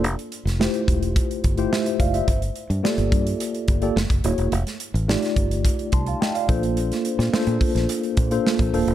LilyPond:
<<
  \new Staff \with { instrumentName = "Tine electric piano" } { \time 4/4 \key f \major \tempo 4 = 107 << { r2. <c'' e''>8 <d'' f''>16 <c'' e''>16~ | <c'' e''>16 r2. r8. | r2 r8 <a'' c'''>16 <f'' a''>16 <ees'' g''>16 <d'' f''>8 r16 | r1 | } \\ { r4 <a e' f' g' c''>4~ <a e' f' g' c''>16 r8 <a e' f' g' c''>8 r8. | r4 <bes f' g' a' d''>4~ <bes f' g' a' d''>16 r8 <bes f' g' a' d''>16 r8 <ais e' fis' gis' cis''>8 | r4 <a ees' f' g' d''>4~ <a ees' f' g' d''>16 r4 r16 <bes d' f' a' c''>8~ | <bes d' f' a' c''>8. r16 <bes d' f' a' c''>4~ <bes d' f' a' c''>16 r8 <bes d' f' a' c''>8 r16 <bes d' f' a' c''>8 | } >> }
  \new Staff \with { instrumentName = "Fingered electric bass" } { \clef bass \time 4/4 \key f \major f,,16 r8 f,,8 r16 e,,8. r16 g,,8 r8 fis,,8 | g,,8 r16 g,16 r16 g,,16 g,8 r8 g,,8 fis,,16 fis,,16 ees,,16 e,,16 | f,,16 r8 a,,8 r16 g,,8. r16 c,8 r8 bes,,8~ | bes,,8 r16 bes,16 r16 bes,16 r16 bes,,16 r8 bes,8 r16 bes,,16 ees,,16 e,,16 | }
  \new DrumStaff \with { instrumentName = "Drums" } \drummode { \time 4/4 hh16 hh16 hh16 <hh sn>16 sn16 hh16 <hh bd>16 hh16 <hh bd>16 hh16 <hh bd>16 hh16 sn16 hh16 <hh bd>16 hh16 | <hh bd>16 hh16 hh16 hh16 sn16 hh16 <hh bd>16 hh16 hh16 hh16 <hh bd>16 hh16 sn16 <hh bd>16 hh16 hh16 | hh16 <hh sn>16 hh16 hh16 sn16 <hh sn>16 <hh bd>16 hh16 <hh bd>16 hh16 <hh bd>16 hh16 sn16 hh16 <hh bd>16 hh16 | hh16 <hh sn>16 hh16 <hh sn>16 sn16 hh16 <hho bd>16 <hh sn>16 hh16 hh16 <hh bd>16 hh16 sn16 <hh bd>16 hho16 hh16 | }
>>